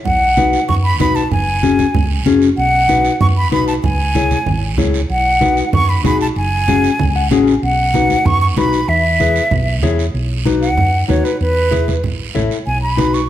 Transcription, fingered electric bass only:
0.05 B1
0.69 F#2
1.00 B1
1.32 F#1
1.95 C#2
2.26 F#1
2.58 B1
3.21 F#2
3.52 B1
3.84 C#2
4.47 G#1
4.78 C#2
5.10 B1
5.73 F#2
6.04 B1
6.36 F#1
6.99 C#2
7.31 A1
7.63 B1
8.25 F#2
8.57 B1
8.88 E2
9.52 B1
9.83 E2
10.14 B1
10.78 F#2
11.09 D#2
11.41 E2
12.04 A1
12.35 A1
12.67 B1

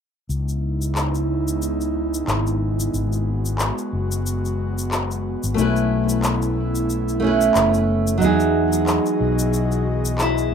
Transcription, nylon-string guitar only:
5.54 A3 C#4
5.59 E4 B4
7.20 A3 C#4
7.24 E4 B4
8.18 F#3 D#4
8.22 E4 G#4

